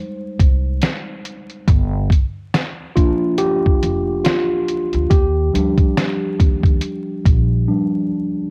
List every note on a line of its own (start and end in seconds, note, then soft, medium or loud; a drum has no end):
0.00 1.63 G3 soft
0.00 1.64 G#3 soft
0.00 1.64 D#4 medium
0.00 1.20 C5 medium
0.39 0.79 C2 medium
0.39 kick medium
0.39 closed hi-hat medium
0.82 snare loud
0.82 closed hi-hat medium
1.25 closed hi-hat medium
1.50 closed hi-hat soft
1.68 2.07 G1 loud
1.68 kick loud
1.68 closed hi-hat medium
2.10 kick medium
2.10 closed hi-hat medium
2.54 snare loud
2.54 closed hi-hat medium
2.96 5.07 F3 medium
2.96 5.07 A#3 soft
2.96 5.07 D4 medium
2.96 3.15 F4 medium
2.96 kick medium
2.96 closed hi-hat medium
3.38 4.27 G4 loud
3.38 closed hi-hat medium
3.66 kick medium
3.83 4.22 F1 medium
3.83 closed hi-hat medium
4.24 5.06 F4 medium
4.24 snare loud
4.24 closed hi-hat medium
4.68 closed hi-hat medium
4.93 5.10 D2 medium
4.93 closed hi-hat soft
5.10 5.50 D#2 loud
5.10 7.64 G4 medium
5.10 kick loud
5.10 closed hi-hat medium
5.53 5.77 D2 medium
5.53 6.13 F3 medium
5.53 6.14 G3 medium
5.53 6.14 D4 medium
5.53 closed hi-hat medium
5.78 kick medium
5.78 closed hi-hat soft
5.97 snare loud
5.97 closed hi-hat medium
6.40 6.79 D#2 medium
6.40 kick medium
6.40 closed hi-hat medium
6.63 kick loud
6.63 closed hi-hat soft
6.81 closed hi-hat medium
7.25 7.65 A#1 medium
7.25 kick loud
7.25 closed hi-hat medium
7.68 8.07 F3 soft
7.68 8.07 G3 soft
7.68 8.07 D4 medium